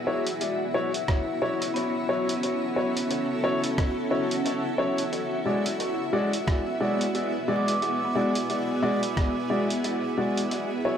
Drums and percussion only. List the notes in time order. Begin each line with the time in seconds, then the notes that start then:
0.27 closed hi-hat
0.41 closed hi-hat
0.94 closed hi-hat
1.08 kick, cross-stick, closed hi-hat
1.62 closed hi-hat
1.76 closed hi-hat
2.29 closed hi-hat
2.43 closed hi-hat
2.97 closed hi-hat
3.11 closed hi-hat
3.64 closed hi-hat
3.78 kick, cross-stick, closed hi-hat
4.31 closed hi-hat
4.46 closed hi-hat
4.98 closed hi-hat
5.13 closed hi-hat
5.66 closed hi-hat
5.80 closed hi-hat
6.33 closed hi-hat
6.47 kick, cross-stick, closed hi-hat
7.01 closed hi-hat
7.15 closed hi-hat
7.68 closed hi-hat
7.82 closed hi-hat
8.35 closed hi-hat
8.50 closed hi-hat
9.03 closed hi-hat
9.17 kick, cross-stick, closed hi-hat
9.70 closed hi-hat
9.84 closed hi-hat
10.37 closed hi-hat
10.51 closed hi-hat